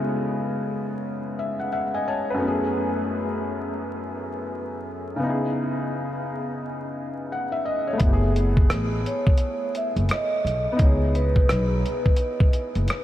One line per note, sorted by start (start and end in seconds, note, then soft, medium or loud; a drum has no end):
0.00 2.35 C#3 medium
0.00 2.41 G#3 medium
0.00 2.36 B3 medium
0.00 2.39 E4 medium
0.00 2.08 C#5 medium
0.00 1.93 D#5 medium
1.39 1.71 E5 medium
1.60 1.71 F#5 medium
1.73 1.93 E5 medium
1.73 1.93 F#5 medium
1.94 2.07 D#5 medium
1.94 2.07 G#5 medium
2.08 2.28 C#5 medium
2.08 2.40 A5 medium
2.30 2.63 B4 medium
2.34 5.13 F#2 medium
2.34 5.15 A3 medium
2.40 5.16 B3 medium
2.40 5.17 C#4 medium
2.45 5.19 E4 medium
2.45 5.20 G#4 medium
5.16 7.94 C#3 medium
5.16 7.95 B3 medium
5.23 7.97 D#4 medium
5.23 7.99 E4 soft
5.29 8.00 G#4 medium
7.32 7.52 F#5 medium
7.52 7.65 E5 medium
7.65 7.86 D#5 medium
7.87 8.20 C#5 medium
7.93 10.72 A3 medium
7.98 8.66 F#1 loud
7.98 10.71 B3 medium
7.98 kick loud
7.98 closed hi-hat medium
8.02 10.76 E4 medium
8.06 8.11 G4 medium
8.13 10.82 G#4 medium
8.36 closed hi-hat medium
8.57 kick medium
8.70 9.03 A1 medium
8.70 cross-stick loud
8.70 closed hi-hat medium
9.06 9.72 C#5 loud
9.06 closed hi-hat medium
9.27 kick medium
9.38 closed hi-hat medium
9.75 9.92 E5 loud
9.75 closed hi-hat medium
9.96 10.09 F#1 loud
9.96 closed hi-hat soft
10.09 10.82 D#5 loud
10.09 cross-stick loud
10.09 closed hi-hat medium
10.45 10.65 B1 medium
10.45 closed hi-hat medium
10.72 13.04 B3 medium
10.77 11.45 C#2 loud
10.77 13.04 D#4 medium
10.77 kick loud
10.77 closed hi-hat medium
10.81 13.04 E4 medium
10.81 11.16 C#5 medium
10.86 13.04 G#4 medium
11.15 13.04 B4 medium
11.15 closed hi-hat medium
11.36 kick medium
11.49 11.82 B1 loud
11.49 cross-stick loud
11.49 closed hi-hat medium
11.86 closed hi-hat medium
12.06 kick medium
12.16 closed hi-hat medium
12.40 kick medium
12.53 closed hi-hat medium
12.75 12.88 F#1 medium
12.75 closed hi-hat soft
12.88 cross-stick loud
12.88 closed hi-hat medium